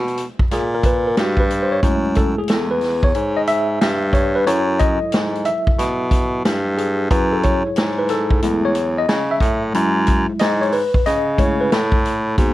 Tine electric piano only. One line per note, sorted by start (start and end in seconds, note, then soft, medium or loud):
0.53 0.74 G#4 medium
0.74 0.85 A#4 medium
0.86 1.07 B4 medium
1.07 1.18 A#4 medium
1.19 1.40 F#4 medium
1.40 1.50 B4 medium
1.63 1.72 C5 medium
1.72 2.18 C#5 medium
1.83 2.78 G#3 medium
1.83 2.78 A3 medium
1.83 2.78 E4 medium
2.16 2.38 A4 medium
2.38 2.50 G#4 medium
2.50 2.69 A4 medium
2.71 3.05 B4 medium
3.04 3.38 C#5 medium
3.37 3.42 D#5 loud
3.48 4.16 E5 loud
4.13 4.36 C#5 loud
4.35 4.47 B4 loud
4.46 7.06 F#3 medium
4.46 7.07 E4 medium
4.46 7.06 A4 medium
4.46 4.81 C#5 loud
4.79 5.48 D#5 loud
5.46 6.41 E5 medium
6.78 7.09 G#4 medium
7.10 9.70 F#3 medium
7.10 8.42 E4 medium
7.10 9.70 G#4 medium
7.10 7.33 B4 medium
7.33 7.44 A4 medium
7.44 8.00 C#5 loud
7.98 8.10 B4 medium
8.10 8.66 A4 loud
8.42 8.72 G#3 soft
8.42 8.72 A3 soft
8.42 8.72 E4 medium
8.65 8.99 C#5 loud
8.98 9.32 D#5 loud
9.31 9.61 E5 loud
9.74 10.69 F#3 medium
9.74 10.69 G#3 medium
9.74 10.69 E4 medium
10.40 10.62 D#5 loud
10.61 10.73 C#5 loud
10.73 11.04 B4 loud
11.06 11.40 D#5 loud
11.39 11.69 G#3 medium
11.39 11.69 A3 soft
11.39 11.69 E4 medium
11.39 11.61 C#5 medium
11.61 11.72 B4 medium
11.72 12.34 A4 medium
12.37 12.54 A#3 medium
12.37 12.54 B3 soft
12.37 12.54 F#4 medium